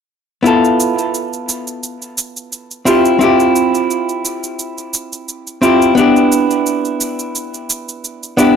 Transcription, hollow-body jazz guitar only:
0.43 2.82 B3 medium
0.43 2.82 E4 medium
0.43 2.83 F4 medium
0.47 2.84 A4 medium
2.85 3.17 C4 medium
2.85 3.17 E4 medium
2.85 3.18 F4 medium
2.85 3.18 G4 medium
3.19 5.58 C4 medium
3.19 5.58 E4 medium
3.19 5.59 F4 medium
3.23 5.60 G4 medium
5.62 5.93 C4 medium
5.62 5.93 E4 medium
5.62 5.94 F4 medium
5.62 5.94 G4 medium
5.95 8.34 B3 medium
5.95 8.34 D4 medium
5.95 8.35 E4 medium
5.99 8.36 G4 medium
8.37 8.56 B3 medium
8.37 8.56 D4 medium
8.37 8.56 E4 medium
8.37 8.56 G4 medium

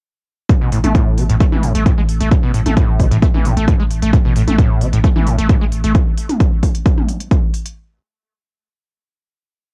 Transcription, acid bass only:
0.49 0.53 A2 loud
0.61 0.70 B2 medium
0.72 0.79 A2 medium
0.84 0.93 A3 medium
0.95 1.19 A2 medium
1.18 1.24 C3 medium
1.29 1.35 A2 medium
1.40 1.44 A3 loud
1.52 1.65 E3 medium
1.63 1.73 A2 loud
1.75 1.84 A3 medium
1.86 1.92 A2 medium
1.98 2.01 G#3 medium
2.20 2.29 A3 medium
2.31 2.35 A2 loud
2.43 2.52 B2 medium
2.54 2.61 A2 medium
2.66 2.75 A3 medium
2.77 3.01 A2 medium
3.00 3.06 C3 medium
3.11 3.17 A2 medium
3.22 3.26 A3 loud
3.34 3.47 E3 medium
3.45 3.55 A2 loud
3.57 3.66 A3 medium
3.68 3.74 A2 medium
3.80 3.83 G#3 medium
4.02 4.11 A3 medium
4.13 4.17 A2 loud
4.25 4.34 B2 medium
4.36 4.42 A2 medium
4.48 4.57 A3 medium
4.59 4.83 A2 medium
4.81 4.88 C3 medium
4.93 4.99 A2 medium
5.04 5.08 A3 loud
5.16 5.28 E3 medium
5.27 5.37 A2 loud
5.39 5.48 A3 medium
5.50 5.56 A2 medium
5.61 5.65 G#3 medium
5.84 5.93 A3 medium

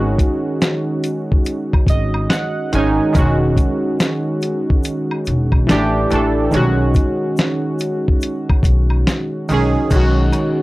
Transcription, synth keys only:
0.00 1.36 D#3 medium
0.00 1.36 G#3 medium
0.00 1.37 C#4 medium
0.00 1.38 F#4 medium
1.90 2.28 D#5 medium
2.30 2.69 F#5 medium
2.73 3.12 D#3 medium
2.73 3.13 G#3 medium
2.73 3.15 C#4 medium
2.73 3.13 G#5 medium
2.78 3.16 D#4 medium
3.13 4.74 D#3 medium
3.13 4.75 G#3 medium
3.13 4.76 C#4 medium
3.18 4.77 F#4 medium
5.67 6.08 E3 medium
5.67 6.09 A3 medium
5.67 6.09 D4 medium
5.72 6.10 G4 loud
6.11 6.51 E3 medium
6.11 6.52 A3 medium
6.11 6.52 D4 medium
6.15 6.53 A4 medium
6.51 8.12 D#3 medium
6.51 8.13 G#3 medium
6.51 8.14 C#4 medium
6.56 8.15 F#4 medium
9.49 9.89 D#3 medium
9.49 9.90 G#3 medium
9.49 9.90 C#4 medium
9.54 9.91 G#4 medium
9.90 10.62 D#3 medium
9.90 10.62 G#3 medium
9.90 10.62 C#4 medium
9.96 10.62 F#4 loud

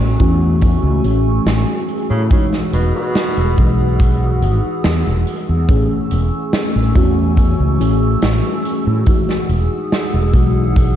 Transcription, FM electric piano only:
0.00 0.14 E3 medium
0.00 0.15 A3 medium
0.00 0.15 C#4 medium
0.00 0.16 G#4 medium
0.19 0.99 E3 medium
0.19 0.99 A3 medium
0.19 0.99 C#4 medium
0.19 1.00 F#4 loud
1.03 2.25 E3 medium
1.03 2.26 A3 medium
1.03 2.26 C#4 medium
1.03 2.27 G#4 medium
2.29 3.52 E3 medium
2.29 3.53 G#3 medium
2.29 3.53 D#4 medium
2.29 3.54 F#4 medium
3.56 5.63 E3 medium
3.56 5.64 G#3 medium
3.56 5.64 D#4 medium
3.56 5.65 F#4 medium
5.68 6.90 E3 medium
5.68 6.91 A3 medium
5.68 6.91 C#4 medium
5.68 6.92 G#4 medium
6.95 7.75 E3 medium
6.95 7.75 A3 medium
6.95 7.75 C#4 medium
6.95 7.76 F#4 loud
7.79 9.01 E3 medium
7.79 9.02 A3 medium
7.79 9.02 C#4 medium
7.79 9.03 G#4 medium
9.05 10.28 E3 medium
9.05 10.28 G#3 medium
9.05 10.29 D#4 medium
9.05 10.30 F#4 medium
10.32 10.96 E3 medium
10.32 10.96 G#3 medium
10.32 10.96 D#4 medium
10.32 10.96 F#4 medium

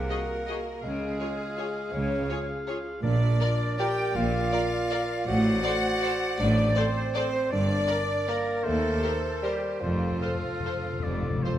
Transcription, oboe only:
0.00 0.54 F#5 medium
0.82 2.99 F5 medium
3.03 5.23 D5 medium
5.27 7.21 D5 medium
7.51 8.65 D5 medium
8.64 9.81 C5 medium
9.83 10.18 C5 medium
10.23 11.05 F5 medium
11.03 11.45 D5 medium
11.43 11.59 C5 medium

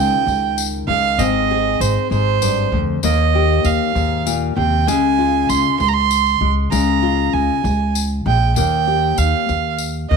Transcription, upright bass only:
0.00 0.11 C#2 medium
0.27 0.85 C#2 medium
0.88 1.17 C#2 medium
1.18 1.77 G#1 medium
1.80 1.95 G#1 medium
2.11 2.69 G#1 medium
2.72 3.01 D2 medium
3.03 3.62 D#2 medium
3.64 3.79 D#2 medium
3.95 4.54 D#2 medium
4.57 4.86 D#2 medium
4.88 5.46 C#2 medium
5.49 5.64 C#2 medium
5.80 6.38 C#2 medium
6.41 6.70 C#2 medium
6.72 7.30 C#2 medium
7.34 7.48 C#2 medium
7.64 8.22 C#2 medium
8.26 8.55 A#1 medium
8.57 9.15 D#2 medium
9.18 9.33 D#2 medium
9.49 10.08 D#2 medium
10.11 10.17 D#2 medium

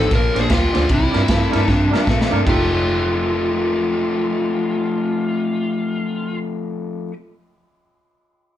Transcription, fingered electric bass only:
0.12 0.27 A#1 medium
0.36 0.45 A#1 medium
0.51 0.66 D2 medium
0.75 0.84 D2 medium
0.90 1.05 C2 medium
1.15 1.24 G2 medium
1.29 1.44 G2 medium
1.55 1.63 G2 medium
1.68 1.92 G2 medium
2.07 2.23 A#2 medium
2.32 2.41 G2 medium
2.47 7.07 F1 medium

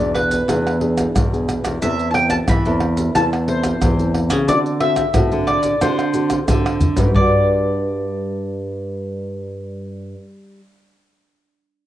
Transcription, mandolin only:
0.00 0.14 D5 medium
0.15 0.78 B4 medium
1.82 2.10 E5 loud
2.11 2.30 G5 medium
2.11 2.14 A5 medium
2.30 2.35 A5 medium
2.49 3.12 B5 loud
3.15 3.24 A5 loud
3.48 4.11 C5 medium
4.49 4.57 D5 loud
4.80 5.47 E5 loud
5.47 5.82 D5 medium
5.82 6.78 C5 medium
7.15 10.14 D5 medium

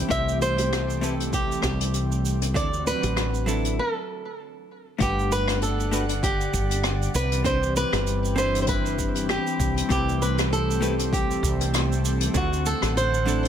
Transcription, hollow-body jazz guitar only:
0.09 0.98 A3 medium
0.09 0.99 C4 medium
0.09 0.99 E4 medium
0.09 1.00 G4 medium
0.09 1.00 C5 medium
1.01 1.14 A3 medium
1.01 1.14 C4 medium
1.01 1.14 E4 medium
1.01 1.14 G4 medium
1.01 1.15 B4 medium
2.54 2.67 F#3 medium
2.54 2.67 C4 medium
2.54 2.67 D4 medium
2.54 2.67 E4 medium
2.54 2.68 A4 medium
3.46 3.77 F#3 medium
3.46 3.78 C4 medium
3.46 3.78 D4 medium
3.46 3.78 E4 medium
3.46 3.78 A4 loud
4.98 5.88 A3 medium
4.98 5.88 D4 medium
4.98 5.89 G4 medium
4.98 5.90 B4 medium
4.98 5.89 F#5 medium
5.91 6.04 A3 medium
5.91 6.04 D4 medium
5.91 6.04 F#4 medium
5.91 6.04 G4 medium
5.91 6.05 B4 medium
7.44 7.57 C4 medium
7.44 7.57 D4 medium
7.44 7.57 E4 medium
7.44 7.58 G4 medium
7.44 7.58 B4 medium
8.36 9.86 C4 loud
8.36 9.87 D4 medium
8.36 9.87 E4 medium
8.36 9.88 G4 medium
8.36 9.88 B4 loud
9.89 10.78 A3 medium
9.89 10.78 C4 medium
9.89 10.79 E4 medium
9.89 10.79 G4 medium
9.89 10.80 B4 loud
10.80 10.93 A3 medium
10.80 10.94 C4 medium
10.80 10.94 E4 medium
10.80 10.94 G4 medium
10.80 10.94 B4 loud
12.34 12.47 F#3 medium
12.34 12.47 C4 medium
12.34 12.47 D4 medium
12.34 12.47 E4 medium
12.34 12.47 A4 medium
13.26 13.48 F#3 loud
13.26 13.48 C4 medium
13.26 13.48 D4 medium
13.26 13.48 E4 medium
13.26 13.48 A4 loud

